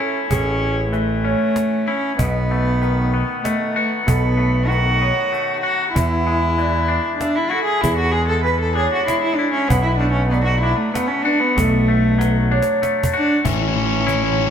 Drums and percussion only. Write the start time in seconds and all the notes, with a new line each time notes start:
0.31 cajon bass
0.93 cajon slap
1.56 cajon slap
2.19 cajon bass
2.82 cajon slap
3.45 cajon slap
4.08 cajon bass
4.72 cajon slap
5.34 cajon slap
5.96 cajon bass
6.59 cajon slap
7.21 cajon slap
7.84 cajon bass
8.47 cajon slap
9.08 cajon slap
9.70 cajon bass
10.33 cajon slap
10.95 cajon slap
11.58 cajon bass
12.21 cajon slap
12.62 cajon slap
12.83 cajon slap
13.04 cajon bass
13.45 cajon bass, cajon slap
14.08 cajon slap